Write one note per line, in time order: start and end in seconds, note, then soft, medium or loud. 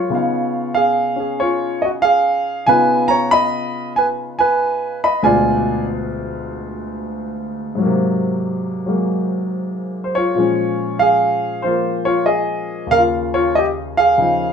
0.00 0.12 C3 medium
0.00 0.10 G#3 soft
0.00 0.11 A#3 soft
0.00 0.72 F4 medium
0.00 0.71 C#5 medium
0.10 2.66 C#3 soft
0.10 2.67 B3 soft
0.10 2.67 D#4 soft
0.15 0.73 F5 medium
0.74 1.18 G#4 medium
0.74 1.40 F5 medium
1.16 2.66 C#4 soft
1.16 2.03 G#4 soft
1.40 1.80 F4 medium
1.40 1.83 C#5 medium
1.82 1.90 F#4 medium
1.82 1.87 D#5 medium
2.02 2.64 G#4 medium
2.02 2.68 F5 medium
2.67 5.23 C#3 soft
2.67 5.24 B3 soft
2.67 5.24 D#4 soft
2.67 5.23 F4 medium
2.67 3.07 B4 medium
2.67 3.10 G#5 loud
3.08 3.30 C#5 medium
3.08 3.31 A#5 loud
3.31 3.92 D#5 medium
3.31 3.91 B5 loud
3.96 4.07 B4 medium
3.96 4.06 G#5 medium
4.39 4.99 B4 medium
4.39 4.98 G#5 medium
5.04 5.23 D#5 medium
5.04 5.25 B5 medium
5.23 7.79 D2 medium
5.23 7.80 B2 soft
5.23 7.79 G#3 medium
5.23 7.80 F4 medium
5.23 5.84 D5 medium
5.23 5.83 G#5 medium
7.75 10.33 G#2 medium
7.75 8.85 F#3 medium
7.82 10.39 C3 medium
7.82 8.87 A#3 medium
8.86 10.35 F#3 soft
8.86 10.36 G#3 soft
8.86 10.37 A#3 soft
10.04 10.14 C5 medium
10.15 10.97 F4 medium
10.15 10.96 C#5 medium
10.35 12.91 A#2 soft
10.35 11.63 F3 soft
10.35 12.92 G#3 soft
10.40 12.93 C#4 medium
10.99 11.61 G#4 medium
10.99 11.65 F5 medium
11.62 12.92 F3 soft
11.62 12.04 F4 medium
11.62 12.02 C5 medium
11.67 12.93 A#3 soft
12.05 12.26 F4 medium
12.05 12.25 C#5 medium
12.26 12.87 G#4 medium
12.26 12.92 D#5 medium
12.87 14.53 D#2 soft
12.87 14.16 C#3 soft
12.91 14.53 A#3 soft
12.91 13.02 A#4 medium
12.91 13.01 F5 loud
12.98 13.34 F4 medium
13.34 13.55 F4 medium
13.34 13.56 C#5 medium
13.55 13.68 G4 medium
13.55 13.65 D#5 medium
13.97 14.53 G#4 medium
13.97 14.53 F5 medium
14.18 14.53 C#3 soft
14.18 14.53 F3 soft
14.18 14.53 D#4 medium